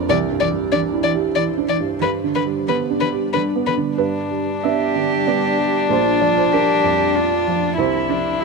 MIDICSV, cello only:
0, 0, Header, 1, 2, 480
1, 0, Start_track
1, 0, Key_signature, 1, "major"
1, 0, Tempo, 633580
1, 70, Time_signature, 3, 2, 24, 8
1, 1031, Tempo, 654308
1, 3431, Tempo, 628272
1, 6344, End_track
2, 0, Start_track
2, 0, Title_t, "Cello"
2, 0, Program_c, 0, 42
2, 70, Note_on_c, 0, 52, 62
2, 131, Note_off_c, 0, 52, 0
2, 305, Note_on_c, 0, 52, 55
2, 366, Note_off_c, 0, 52, 0
2, 553, Note_on_c, 0, 52, 56
2, 614, Note_off_c, 0, 52, 0
2, 783, Note_on_c, 0, 52, 45
2, 844, Note_off_c, 0, 52, 0
2, 1023, Note_on_c, 0, 52, 44
2, 1081, Note_off_c, 0, 52, 0
2, 1264, Note_on_c, 0, 52, 43
2, 1323, Note_off_c, 0, 52, 0
2, 1498, Note_on_c, 0, 50, 49
2, 1557, Note_off_c, 0, 50, 0
2, 1755, Note_on_c, 0, 50, 41
2, 1814, Note_off_c, 0, 50, 0
2, 1996, Note_on_c, 0, 50, 44
2, 2054, Note_off_c, 0, 50, 0
2, 2242, Note_on_c, 0, 50, 43
2, 2301, Note_off_c, 0, 50, 0
2, 2492, Note_on_c, 0, 50, 41
2, 2551, Note_off_c, 0, 50, 0
2, 2725, Note_on_c, 0, 50, 39
2, 2783, Note_off_c, 0, 50, 0
2, 3444, Note_on_c, 0, 67, 62
2, 4374, Note_off_c, 0, 67, 0
2, 4406, Note_on_c, 0, 65, 58
2, 4877, Note_on_c, 0, 67, 58
2, 4888, Note_off_c, 0, 65, 0
2, 5355, Note_on_c, 0, 65, 55
2, 5366, Note_off_c, 0, 67, 0
2, 5833, Note_off_c, 0, 65, 0
2, 5836, Note_on_c, 0, 64, 49
2, 6079, Note_on_c, 0, 62, 49
2, 6091, Note_off_c, 0, 64, 0
2, 6317, Note_on_c, 0, 64, 57
2, 6328, Note_off_c, 0, 62, 0
2, 6344, Note_off_c, 0, 64, 0
2, 6344, End_track
0, 0, End_of_file